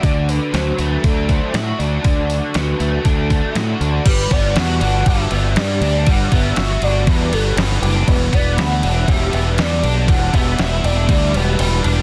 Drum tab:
CC |----------------|----------------|x-x-x-x-x-x-x-x-|x-x-x-x-x-x-x-x-|
HH |o-o-o-o-o-o-o-o-|o-o-o-o-o-o-o-o-|----------------|----------------|
SD |----o-------o---|----o-------o---|----o-------o---|----o-------oo--|
BD |o-------o-o-----|o-------o-o-----|o-o-----o-------|o-o-----o-------|

CC |x-x-x-x-x-x-x-x-|x-x-x-x-x-x-x-x-|
HH |----------------|----------------|
SD |----o-------oo--|----o-----------|
BD |o-o-----o-------|o-o-----o-------|